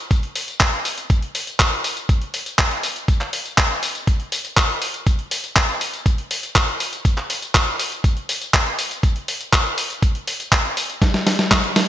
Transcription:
0.11 kick, closed hi-hat, tambourine
0.23 closed hi-hat
0.35 open hi-hat, tambourine
0.48 closed hi-hat, tambourine
0.60 kick, clap, closed hi-hat, tambourine
0.73 closed hi-hat
0.85 open hi-hat, tambourine
0.98 closed hi-hat, tambourine
1.10 kick, closed hi-hat, tambourine
1.22 closed hi-hat
1.35 open hi-hat, tambourine
1.47 closed hi-hat, tambourine
1.60 kick, clap, closed hi-hat, tambourine
1.72 tambourine
1.84 open hi-hat, tambourine
1.97 closed hi-hat, tambourine
2.09 kick, closed hi-hat, tambourine
2.21 closed hi-hat
2.34 open hi-hat, tambourine
2.46 closed hi-hat, tambourine
2.59 kick, clap, closed hi-hat, tambourine
2.71 closed hi-hat, tambourine
2.83 open hi-hat, tambourine
2.96 closed hi-hat, tambourine
3.08 kick, closed hi-hat, tambourine
3.21 clap, closed hi-hat
3.33 open hi-hat, tambourine
3.45 closed hi-hat, tambourine
3.58 kick, clap, closed hi-hat, tambourine
3.70 tambourine
3.83 open hi-hat, tambourine
3.95 closed hi-hat, tambourine
4.07 kick, closed hi-hat, tambourine
4.20 closed hi-hat
4.32 open hi-hat, tambourine
4.44 closed hi-hat, tambourine
4.57 kick, clap, closed hi-hat, tambourine
4.69 closed hi-hat
4.82 open hi-hat, tambourine
4.94 closed hi-hat, tambourine
5.07 kick, closed hi-hat, tambourine
5.19 closed hi-hat
5.31 open hi-hat, tambourine
5.44 closed hi-hat, tambourine
5.56 kick, clap, closed hi-hat, tambourine
5.69 tambourine
5.81 open hi-hat, tambourine
5.93 closed hi-hat, tambourine
6.06 kick, closed hi-hat, tambourine
6.18 closed hi-hat
6.31 open hi-hat, tambourine
6.43 closed hi-hat, tambourine
6.55 kick, clap, closed hi-hat, tambourine
6.68 closed hi-hat
6.80 open hi-hat, tambourine
6.93 closed hi-hat, tambourine
7.05 kick, closed hi-hat, tambourine
7.18 clap, closed hi-hat
7.30 open hi-hat, tambourine
7.42 closed hi-hat, tambourine
7.55 kick, clap, closed hi-hat, tambourine
7.67 tambourine
7.79 open hi-hat, tambourine
7.92 closed hi-hat, tambourine
8.04 kick, closed hi-hat, tambourine
8.17 closed hi-hat
8.29 open hi-hat, tambourine
8.41 closed hi-hat, tambourine
8.54 kick, clap, closed hi-hat, tambourine
8.66 closed hi-hat
8.79 open hi-hat, tambourine
8.91 closed hi-hat, tambourine
9.03 kick, closed hi-hat, tambourine
9.16 closed hi-hat
9.28 open hi-hat, tambourine
9.41 closed hi-hat, tambourine
9.53 kick, clap, closed hi-hat, tambourine
9.65 tambourine
9.78 open hi-hat, tambourine
9.90 closed hi-hat, tambourine
10.02 kick, closed hi-hat, tambourine
10.15 closed hi-hat
10.27 open hi-hat, tambourine
10.40 closed hi-hat, tambourine
10.52 kick, clap, closed hi-hat, tambourine
10.65 closed hi-hat
10.77 open hi-hat, tambourine
10.89 closed hi-hat, tambourine
11.02 kick, snare, closed hi-hat, tambourine
11.14 snare, closed hi-hat
11.27 snare, open hi-hat, tambourine
11.39 snare, closed hi-hat, tambourine
11.51 kick, snare, clap, closed hi-hat, tambourine
11.64 closed hi-hat, tambourine
11.76 snare, open hi-hat, tambourine

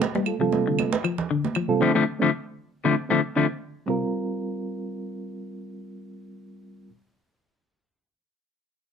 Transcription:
0.02 high conga
0.15 G3, high conga
0.26 F4 A4, claves
0.39 C3 F3 G3 C4 F4 A4
0.52 high conga
0.67 D3
0.79 high conga, claves
0.93 high conga
1.04 F3, claves
1.18 low conga
1.31 D3
1.45 high conga
1.55 F3, claves
1.68 C3 G3 C4 F4 A4
1.80 D3 F3 A3 C4 D4
1.94 D3 F3 A3 C4 D4
2.19 D3 F3 A3 C4 D4
2.85 D3 F3 A3 C4 D4
3.09 D3 F3 A3 C4 D4
3.36 D3 F3 A3 C4 D4
3.86 C3 G3 C4 F4 A#4

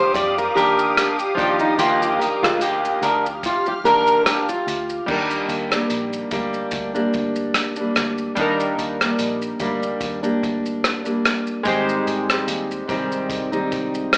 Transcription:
Already playing: F3 D4 D#4 G4 C5 F5 D6 D#6
0.14 F2 D5, kick, closed hi-hat, shaker
0.38 A#4, shaker
0.55 D#2 D4 G4 A#4, closed hi-hat, shaker
0.79 shaker
0.97 cross-stick, closed hi-hat, shaker
1.19 shaker
1.35 D#2 F3 D4 D#4 F4, kick, closed hi-hat, shaker
1.40 G4
1.59 D#4, shaker
1.78 D#2 A#3 F4 G4, closed hi-hat, shaker
2.02 G4, shaker
2.19 A#4, closed hi-hat, shaker
2.43 D2 G#3 F4, cross-stick, shaker
2.61 A#3 G4, closed hi-hat, shaker
2.85 shaker
3.02 D2 D4 A#4 F6, closed hi-hat, shaker
3.26 shaker
3.43 F4, kick, closed hi-hat, shaker
3.66 G4, shaker
3.84 D#2 D4 A#4, closed hi-hat, shaker
4.07 shaker
4.26 G4, cross-stick, closed hi-hat, shaker
4.49 F4, shaker
4.67 D2, closed hi-hat, shaker
4.90 shaker
5.06 D#2 D#3 G3 A#3 D4 D#4, kick, crash
5.11 D4 A#4
5.30 shaker
5.49 D#2, closed hi-hat, shaker
5.71 G3 A#3 D4, cross-stick, shaker
5.90 A#1, closed hi-hat, shaker
6.13 shaker
6.31 D2 G3 A#3 D4, kick, closed hi-hat, shaker
6.54 shaker
6.71 D2, kick, closed hi-hat, shaker
6.94 G3 A#3 D4, shaker
7.14 D2, kick, closed hi-hat, shaker
7.36 shaker
7.54 cross-stick, closed hi-hat, shaker
7.76 A#3 D4, shaker
7.80 G3
7.96 D2, cross-stick, closed hi-hat, shaker
8.18 shaker
8.35 D#2 D#3 G3 A#3 D4, kick, closed hi-hat, shaker
8.39 D#4 A#4
8.60 shaker
8.78 D#2, closed hi-hat, shaker
9.01 A#3 D4, cross-stick, shaker
9.05 G3
9.19 A#1, closed hi-hat, shaker
9.42 shaker
9.60 D2 G3 A#3 D4, kick, closed hi-hat, shaker
9.83 shaker
10.00 D#2, kick, closed hi-hat, shaker
10.23 G3 A#3 D4, shaker
10.43 D2, kick, closed hi-hat, shaker
10.66 shaker
10.84 cross-stick, closed hi-hat, shaker
11.04 G3 A#3 D4, shaker
11.25 cross-stick, closed hi-hat, shaker
11.47 shaker
11.63 G#1 D#3 G3 G#3 C4 D#4 G4, kick, closed hi-hat, shaker
11.68 D#4 C5
11.89 shaker
12.06 G#1, closed hi-hat, shaker
12.29 G3 C4 D#4, cross-stick, shaker
12.47 D#2, closed hi-hat, shaker
12.71 shaker
12.87 C2 G#2 D#3 G3 C4 D#4, kick, closed hi-hat, shaker
13.12 shaker
13.29 C2, kick, closed hi-hat, shaker
13.52 G#2 D#3 G3 C4 D#4, shaker
13.72 C2, kick, closed hi-hat, shaker
13.94 shaker
14.13 cross-stick, closed hi-hat, shaker

